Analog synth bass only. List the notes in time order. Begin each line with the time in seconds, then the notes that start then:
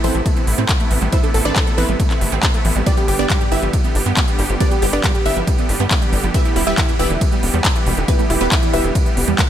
0.04 A1
0.15 A1
0.47 A1
0.58 A2
0.91 A1
1.02 A1
1.34 A1
1.45 A1
1.78 A1
1.89 A1
2.21 G1
2.32 A1
2.65 A1
2.76 A1
3.08 G1
3.19 G1
3.52 G1
3.63 G1
3.95 G1
4.06 G2
4.39 G1
4.50 G1
4.82 G1
4.93 G1
5.26 G1
5.37 G1
5.69 G1
5.80 G2
6.13 G1
6.24 G1
6.56 E1
6.67 E1
7.00 E1
7.10 E1
7.43 E1
7.54 E2
7.87 E1
7.97 E1
8.30 E1
8.41 E1
8.74 E1
8.84 E1
9.17 E1
9.28 E2